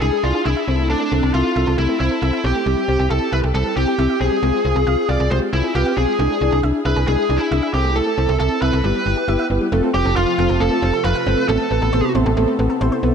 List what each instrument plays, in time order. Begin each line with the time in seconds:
0.02 fm bass C2, synth pluck G#3, analog polysynth D4 E4 G#4, lead electric guitar G#4
0.13 synth pluck G#3
0.24 fm bass C2, synth pluck D4, analog polysynth D4 E4 G#4, lead electric guitar F4
0.35 synth pluck G#4
0.46 fm bass C2, analog polysynth D4 E4 G#4, lead electric guitar E4, synth pluck E5
0.57 synth pluck E5
0.68 fm bass C2, analog polysynth C4 E4 A4, synth pluck C4
0.79 synth pluck A3
0.90 synth pluck A3, lead electric guitar D4
1.01 synth pluck A3
1.12 fm bass C2, analog polysynth C4 E4 A4, synth pluck C4
1.23 fm bass C2, synth pluck A4
1.34 fm bass C2, analog polysynth C4 E4 A4, lead electric guitar F4, synth pluck E5
1.56 fm bass C2, analog polysynth C4 E4 A4, synth pluck E5
1.67 fm bass C2, synth pluck A4
1.78 fm bass C2, synth pluck A3, analog polysynth C4 E4 G4, lead electric guitar E4
1.89 synth pluck A3
2.00 fm bass C2, synth pluck C4, analog polysynth C4 E4 C5, lead electric guitar E4
2.11 synth pluck A4
2.22 fm bass C2, analog polysynth C4 E4 A4, synth pluck E5
2.33 synth pluck E5
2.44 fm bass B1, synth pluck C4, analog polysynth C4 E4 C5, lead electric guitar G4
2.55 synth pluck A3
2.66 fm bass C2, synth pluck G3, analog polysynth C4 E4 G4
2.77 synth pluck G3
2.88 fm bass C2, synth pluck C4, analog polysynth C4 E4 G4
2.99 fm bass C2, synth pluck G4
3.10 fm bass C2, analog polysynth C4 E4 G4, lead electric guitar A4, synth pluck E5
3.32 fm bass C2, analog polysynth C4 E4 A4, lead electric guitar B4, synth pluck E5
3.43 fm bass C2, synth pluck G4
3.54 fm bass C2, synth pluck G3, analog polysynth C4 E4 A4, lead electric guitar A4
3.65 synth pluck G3
3.76 fm bass C2, synth pluck C4, analog polysynth C4 E4 G4, lead electric guitar G4
3.88 synth pluck G4
3.99 fm bass C2, analog polysynth C4 E4 G4, synth pluck E5
4.10 synth pluck E5
4.21 fm bass B1, synth pluck C4, analog polysynth C4 E4 G4, lead electric guitar G#4
4.32 synth pluck G3
4.43 fm bass C2, synth pluck G#3, analog polysynth C4 F4 G#4
4.54 synth pluck G#3
4.65 fm bass C2, synth pluck C4, analog polysynth C4 F4 G#4
4.76 fm bass C2, synth pluck G#4
4.87 fm bass C2, analog polysynth C4 F4 G#4, synth pluck F5
5.09 fm bass C2, analog polysynth C4 F4 G#4, lead electric guitar D5, synth pluck F5
5.20 fm bass C2, synth pluck G#4
5.31 fm bass C2, synth pluck G#3, analog polysynth C4 F4 G4, lead electric guitar C5
5.42 synth pluck G#3
5.53 fm bass C2, synth pluck C4, analog polysynth C4 F4 G#4, lead electric guitar E4
5.64 synth pluck G#4
5.75 fm bass C2, analog polysynth C4 F4 B4, lead electric guitar G4, synth pluck F5
5.86 synth pluck F5
5.97 fm bass B1, synth pluck C4, analog polysynth C4 F4 G#4, lead electric guitar G#4
6.08 synth pluck G#3
6.19 fm bass C2, synth pluck G#3, analog polysynth D4 E4 G#4
6.30 synth pluck G#3
6.41 fm bass C2, analog polysynth D4 E4 G#4, synth pluck D4
6.52 fm bass C2, synth pluck G#4
6.63 fm bass C2, analog polysynth D4 E4 G#4, synth pluck E5
6.85 fm bass C2, analog polysynth D4 E4 G#4, lead electric guitar B4, synth pluck E5
6.96 fm bass C2, synth pluck G#4
7.07 fm bass C2, synth pluck G#3, analog polysynth D4 E4 G#4, lead electric guitar G#4
7.18 synth pluck G#3
7.29 fm bass C2, synth pluck D4, analog polysynth D4 E4 G#4
7.37 lead electric guitar E4, synth pluck G#4
7.51 fm bass C2, analog polysynth D4 E4 G#4, synth pluck E5
7.63 synth pluck E5
7.74 fm bass C2, synth pluck C4, analog polysynth C4 E4 A4, lead electric guitar G4
7.85 synth pluck A3
7.96 synth pluck A3, lead electric guitar A4
8.07 synth pluck A3
8.18 fm bass C2, synth pluck C4, analog polysynth C4 E4 A4
8.29 fm bass C2, synth pluck A4
8.40 fm bass C2, analog polysynth C4 E4 A4, lead electric guitar A4, synth pluck E5
8.62 fm bass C2, analog polysynth C4 E4 A4, lead electric guitar B4, synth pluck E5
8.73 fm bass C2, synth pluck A4
8.84 fm bass G1, synth pluck G3, analog polysynth B3 E4 G4
8.95 synth pluck G3
9.06 fm bass G1, synth pluck B3, analog polysynth B3 E4 G4
9.17 synth pluck G4
9.28 fm bass G1, analog polysynth B3 E4 G4, synth pluck E5
9.39 synth pluck E5
9.50 fm bass G1, synth pluck B3, analog polysynth B3 E4 G4
9.61 synth pluck G3
9.72 fm bass F1, analog synth pad C3 F3 A3 F4, synth pluck A3, analog polysynth C4 F4 A4
9.83 synth pluck A3
9.94 fm bass F1, synth pluck C4, analog polysynth C4 F4 A4, lead electric guitar G4
10.05 fm bass F1, synth pluck A4
10.16 fm bass F1, analog polysynth C4 F4 A4, lead electric guitar F4, synth pluck F5
10.38 fm bass F1, analog polysynth C4 F4 A4, synth pluck F5
10.49 fm bass F1, synth pluck A4
10.60 fm bass F1, synth pluck A3, analog polysynth C4 F4 A4, lead electric guitar A4
10.71 synth pluck A3
10.82 fm bass F1, synth pluck C4, analog polysynth C4 F4 G4
10.93 synth pluck A4
11.04 fm bass F1, analog polysynth C4 F4 A4, lead electric guitar B4, synth pluck F5
11.15 synth pluck F5
11.27 fm bass G1, synth pluck C4, analog polysynth C4 F4 A4
11.38 synth pluck A3
11.49 fm bass A1, synth pluck A3, analog synth pad B3 E4, analog polysynth B3 C4 A4, lead electric guitar A4
11.60 synth pluck A3
11.71 fm bass A1, synth pluck B3, analog polysynth B3 C4 B4
11.82 fm bass A1, synth pluck A4
11.93 fm bass A1, analog polysynth B3 C4 A4, synth pluck C5
12.15 fm bass A1, analog polysynth B3 C4 A4, synth pluck C5
12.26 fm bass A1, synth pluck A4
12.37 fm bass A1, synth pluck A3, analog polysynth B3 C4 A4
12.48 synth pluck A3
12.59 fm bass A1, synth pluck B3, analog polysynth B3 C4 A4
12.70 synth pluck A4
12.81 fm bass A1, analog polysynth B3 C4 A4, synth pluck C5
12.92 synth pluck C5
13.03 fm bass B1, analog polysynth B3 C4 A4, synth pluck B3